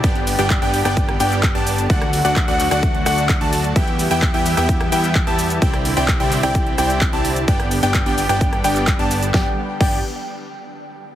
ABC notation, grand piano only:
X:1
M:4/4
L:1/16
Q:1/4=129
K:G
V:1 name="Grand piano"
g3 g2 g2 g3 g3 a3 | f3 f2 f2 f3 f3 a3 | g3 g2 g2 g3 g3 a3 | g3 g2 g2 g3 g3 a3 |
g3 g2 g2 g3 g3 a3 | g z3 g2 z8 z2 |]